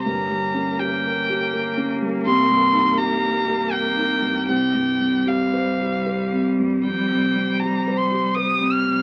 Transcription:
0.00 2.22 G4 soft
0.00 0.80 A#5 medium
0.04 2.28 G1 medium
0.04 2.22 G2 soft
0.04 4.44 A#3 soft
0.04 2.25 C#4 soft
0.04 4.47 A#4 soft
0.29 0.69 G3 soft
0.54 0.94 C#4 soft
0.79 1.18 G4 soft
0.79 1.89 G5 medium
1.05 1.43 A#4 soft
1.29 1.68 G4 soft
1.53 1.92 A#4 soft
1.77 2.16 C#4 soft
2.02 2.26 G3 soft
2.24 4.44 C2 medium
2.24 6.85 C2 medium
2.24 4.47 D#4 soft
2.24 6.80 G4 medium
2.24 2.99 C6 medium
2.50 2.88 G2 soft
2.73 3.12 D#4 soft
2.98 3.37 G4 soft
2.98 3.73 A#5 medium
3.22 3.61 A#4 soft
3.46 3.86 G4 soft
3.72 4.12 A#4 soft
3.72 4.48 G5 medium
3.97 4.37 D#4 soft
4.22 4.48 G2 soft
4.47 6.80 C2 soft
4.47 9.02 G3 medium
4.47 9.02 C4 soft
4.47 9.02 C5 soft
4.47 5.29 G5 medium
4.74 5.16 G2 soft
4.99 5.42 C4 soft
5.26 5.68 G4 soft
5.26 6.46 F5 soft
5.53 5.95 C5 soft
5.82 6.22 G4 soft
6.06 6.48 C5 soft
6.32 6.74 C4 soft
6.59 6.85 G2 soft
6.83 9.02 F1 medium
6.83 9.02 F2 soft
6.83 9.02 G4 soft
6.83 7.61 G5 medium
7.11 7.51 C3 soft
7.36 7.76 C4 soft
7.59 8.01 G4 soft
7.59 7.99 A#5 medium
7.87 8.26 C5 soft
7.97 8.36 C6 medium
8.11 8.50 G4 soft
8.34 8.75 C5 soft
8.34 8.74 D#6 medium
8.60 8.99 C4 soft
8.72 9.02 F6 medium
8.85 9.02 C3 soft

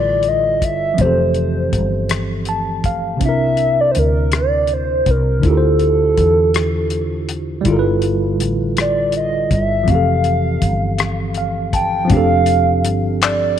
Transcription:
0.00 0.62 A1 medium
0.00 0.93 D3 medium
0.00 0.92 G3 medium
0.00 0.95 E4 medium
0.00 0.96 F4 medium
0.00 0.97 A4 medium
0.00 0.98 B4 medium
0.00 0.30 D5 medium
0.23 closed hi-hat soft
0.28 0.66 D#5 medium
0.62 0.95 G1 medium
0.62 1.02 E5 medium
0.62 kick medium
0.62 closed hi-hat medium
0.94 3.15 F3 medium
0.94 3.16 C4 soft
0.98 1.69 F1 medium
0.98 3.17 E3 soft
0.98 2.11 C5 medium
0.98 kick medium
0.98 closed hi-hat medium
1.03 3.19 G4 medium
1.03 3.20 A4 medium
1.34 closed hi-hat soft
1.73 3.22 G1 medium
1.73 kick medium
1.73 closed hi-hat medium
2.09 cross-stick medium
2.09 closed hi-hat medium
2.45 2.82 A5 medium
2.45 closed hi-hat soft
2.84 3.19 F5 medium
2.84 kick medium
2.84 closed hi-hat medium
3.17 5.37 C3 medium
3.17 5.39 C4 soft
3.17 closed hi-hat medium
3.21 3.91 C2 medium
3.21 5.40 D4 soft
3.21 3.82 E5 loud
3.21 kick medium
3.26 5.42 E4 soft
3.26 5.43 A#4 medium
3.57 closed hi-hat soft
3.81 3.90 D5 medium
3.91 4.00 C5 medium
3.91 closed hi-hat medium
3.96 5.03 D2 medium
3.96 4.37 A#4 medium
4.32 cross-stick medium
4.32 closed hi-hat medium
4.36 4.75 D5 medium
4.67 closed hi-hat soft
4.74 5.12 C5 medium
5.06 5.40 C2 medium
5.06 kick medium
5.06 closed hi-hat medium
5.11 5.48 A#4 medium
5.39 7.60 D3 medium
5.39 7.61 D4 medium
5.39 kick loud
5.39 closed hi-hat medium
5.44 6.14 D2 medium
5.44 7.62 E4 soft
5.44 7.63 F4 medium
5.44 7.30 A4 medium
5.49 7.64 G4 medium
5.49 5.54 A#4 medium
5.57 7.69 C5 medium
5.79 closed hi-hat soft
6.18 7.62 E2 medium
6.18 kick medium
6.18 closed hi-hat medium
6.54 cross-stick medium
6.54 closed hi-hat medium
6.90 closed hi-hat soft
7.29 closed hi-hat medium
7.61 9.83 D3 medium
7.61 9.81 G3 medium
7.61 closed hi-hat medium
7.66 8.41 G1 medium
7.66 9.84 E4 medium
7.66 9.85 F4 medium
7.66 kick medium
7.70 9.86 A4 medium
7.70 7.75 A#4 medium
7.79 9.90 B4 medium
8.02 closed hi-hat soft
8.40 9.48 A1 medium
8.40 closed hi-hat medium
8.77 9.13 D5 medium
8.77 cross-stick medium
8.77 closed hi-hat medium
9.12 closed hi-hat soft
9.17 9.50 D#5 medium
9.51 9.84 G1 medium
9.51 9.91 E5 medium
9.51 kick medium
9.51 closed hi-hat medium
9.83 12.04 F3 medium
9.83 12.05 C4 soft
9.88 10.58 F1 medium
9.88 12.07 E3 medium
9.88 11.37 F5 loud
9.88 kick medium
9.88 closed hi-hat medium
9.92 12.08 G4 soft
9.92 12.10 A4 medium
10.24 closed hi-hat soft
10.62 12.06 G1 medium
10.62 kick medium
10.62 closed hi-hat medium
10.99 cross-stick medium
10.99 closed hi-hat medium
11.34 11.71 F5 medium
11.34 closed hi-hat soft
11.73 12.13 G5 medium
11.73 12.08 A5 medium
11.73 kick medium
11.73 closed hi-hat medium
12.05 13.59 F3 medium
12.05 13.59 C4 medium
12.10 12.86 F1 loud
12.10 13.59 D4 medium
12.10 13.59 G4 medium
12.10 12.85 F5 loud
12.10 kick loud
12.10 closed hi-hat medium
12.17 13.59 A4 medium
12.46 closed hi-hat soft
12.85 13.59 G1 medium
12.85 closed hi-hat medium
13.22 13.59 D5 medium
13.22 clap loud
13.22 closed hi-hat medium

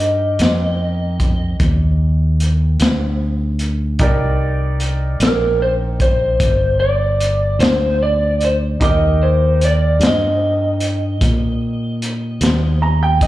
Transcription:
0.00 0.37 G2 medium
0.00 3.96 D#4 soft
0.00 3.96 G4 soft
0.00 3.97 A#4 soft
0.00 1.57 D#5 medium
0.00 3.97 D6 soft
0.39 1.56 F2 medium
0.39 snare loud
0.39 closed hi-hat medium
1.20 kick medium
1.20 closed hi-hat medium
1.60 2.76 D#2 medium
1.60 kick medium
1.60 closed hi-hat medium
2.40 closed hi-hat medium
2.80 3.97 D2 medium
2.80 snare loud
2.80 closed hi-hat medium
3.59 closed hi-hat medium
3.99 5.16 C2 medium
3.99 8.76 D#4 medium
3.99 8.76 G4 medium
3.99 8.77 A#4 medium
3.99 8.78 D5 medium
3.99 kick loud
3.99 closed hi-hat medium
4.80 closed hi-hat medium
5.20 6.37 A#1 medium
5.20 5.62 A#4 medium
5.20 snare loud
5.20 closed hi-hat medium
5.62 5.73 C5 medium
6.00 6.79 C5 medium
6.00 kick medium
6.00 closed hi-hat medium
6.40 7.57 G1 medium
6.40 kick medium
6.40 closed hi-hat medium
6.80 7.63 D5 medium
7.20 closed hi-hat medium
7.59 8.76 D2 medium
7.59 8.02 C5 medium
7.59 snare loud
7.59 closed hi-hat medium
8.03 8.43 D5 medium
8.41 closed hi-hat medium
8.45 8.55 C5 medium
8.80 9.97 D#2 medium
8.80 13.27 D#4 soft
8.80 13.27 G4 soft
8.80 13.27 A#4 soft
8.80 9.23 D#5 medium
8.80 13.27 D6 soft
8.80 kick medium
8.80 closed hi-hat medium
9.23 9.63 C5 medium
9.61 10.00 D5 medium
9.61 closed hi-hat medium
9.99 11.17 G2 medium
9.99 snare loud
9.99 closed hi-hat medium
10.07 13.20 D#5 medium
10.80 closed hi-hat medium
11.21 12.38 A#2 medium
11.21 kick medium
11.21 closed hi-hat medium
12.02 closed hi-hat medium
12.41 13.27 D#2 medium
12.41 snare loud
12.41 closed hi-hat medium
12.82 13.00 A#5 soft
13.03 13.21 G5 medium
13.21 13.27 D#5 medium
13.21 kick medium
13.21 closed hi-hat medium

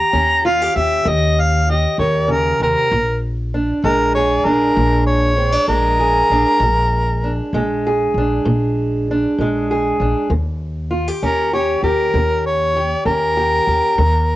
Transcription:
0.00 0.44 G4 medium
0.00 0.43 A#5 loud
0.13 0.66 D#2 medium
0.13 0.69 D#3 medium
0.13 2.87 C#4 medium
0.45 0.62 F4 medium
0.45 0.77 F5 medium
0.62 0.75 G4 medium
0.76 1.02 D#2 medium
0.76 1.68 G4 medium
0.76 1.10 E5 medium
1.05 1.85 D#2 loud
1.05 1.61 D#3 medium
1.05 1.42 D#5 medium
1.41 1.72 F5 medium
1.70 2.88 G4 medium
1.70 1.98 D#5 medium
1.98 2.51 D#2 medium
1.98 2.30 D#3 medium
1.98 2.32 C#5 medium
2.28 2.60 C#3 medium
2.28 2.60 A#4 medium
2.60 2.73 D#2 medium
2.60 2.92 C3 medium
2.60 3.21 A#4 loud
2.92 3.70 A#1 loud
2.92 3.47 A#2 medium
3.54 4.46 D4 soft
3.84 4.36 A#1 medium
3.84 4.39 A#2 medium
3.84 5.67 G#3 medium
3.84 4.14 A#4 loud
4.15 5.98 G#4 medium
4.15 4.47 C#5 medium
4.45 4.71 A#1 medium
4.45 5.36 D4 medium
4.45 5.05 A#4 medium
4.76 5.55 A#1 loud
4.76 5.31 A#2 medium
5.06 5.66 C#5 medium
5.37 5.52 C4 medium
5.52 6.29 D4 soft
5.67 6.21 A#1 medium
5.67 6.23 A#2 medium
5.67 7.53 G#3 medium
5.67 7.49 A#4 loud
6.00 6.57 G#4 medium
6.30 6.43 A#1 medium
6.30 6.58 D4 medium
6.60 7.39 A#1 loud
6.60 7.17 A#2 medium
7.24 8.15 D4 medium
7.53 8.05 A#1 medium
7.53 8.09 A#2 medium
7.53 9.38 G#3 medium
7.87 9.70 G#4 medium
8.14 8.41 A#1 medium
8.14 9.08 D4 medium
8.45 9.24 A#1 medium
8.45 9.01 A#2 medium
9.11 10.00 D4 medium
9.39 9.91 A#1 medium
9.39 9.93 A#2 medium
9.39 10.31 G#3 medium
9.71 10.27 G#4 medium
10.00 10.13 A#1 medium
10.00 10.27 D4 medium
10.30 11.09 D#2 medium
10.30 10.85 D#3 medium
10.91 11.08 F4 medium
11.08 11.52 G4 medium
11.23 11.75 D#2 medium
11.23 11.78 D#3 medium
11.23 13.04 C#4 medium
11.23 11.53 A#4 medium
11.53 11.83 G4 medium
11.53 11.83 C#5 medium
11.83 12.09 D#2 medium
11.83 12.75 G4 medium
11.83 12.43 A#4 medium
12.14 12.93 D#2 medium
12.14 12.70 D#3 medium
12.46 13.05 C#5 medium
12.77 13.36 G4 medium
13.05 13.59 D#2 medium
13.05 13.61 D#3 medium
13.05 13.95 C#4 medium
13.05 14.36 A#4 loud
13.37 13.67 G4 medium
13.67 13.81 D#2 medium
13.67 13.95 G4 medium
13.98 14.36 D#2 medium
13.98 14.36 D#3 medium

